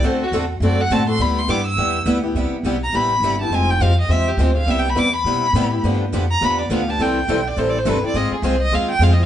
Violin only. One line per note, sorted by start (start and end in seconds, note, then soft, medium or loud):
0.06 0.22 C5 medium
0.23 0.29 F#4 medium
0.65 0.83 D5 medium
0.81 0.94 F#5 loud
0.92 1.09 A5 medium
1.09 1.23 C6 loud
1.22 1.40 B5 medium
1.39 1.52 C6 loud
1.50 1.66 D6 medium
1.66 2.04 E6 loud
2.84 2.97 A#5 medium
2.95 3.41 B5 medium
3.41 3.56 A5 medium
3.54 3.72 G#5 medium
3.70 3.84 G5 medium
3.83 3.99 F5 medium
4.01 4.13 D#5 medium
4.11 4.30 E5 medium
4.28 4.42 G4 medium
4.41 4.57 C5 medium
4.57 4.72 F5 medium
4.70 4.81 E5 medium
4.80 4.91 G5 medium
4.90 5.00 B5 medium
4.99 5.15 D6 loud
5.16 5.81 B5 loud
6.31 6.46 A#5 medium
6.44 6.60 B5 medium
6.61 6.74 D5 medium
6.73 6.91 F5 medium
6.90 7.03 A5 loud
7.02 7.50 G5 medium
7.48 7.60 D5 medium
7.59 7.71 C5 medium
7.70 7.80 D5 medium
7.79 7.91 C5 medium
7.90 8.05 B4 medium
8.06 8.18 D5 medium
8.16 8.33 D#5 medium
8.35 8.47 G#4 soft
8.46 8.62 C5 medium
8.62 8.76 D#5 loud
8.75 8.90 F5 medium
8.91 9.05 G5 loud
9.03 9.14 F5 medium
9.13 9.24 D#5 medium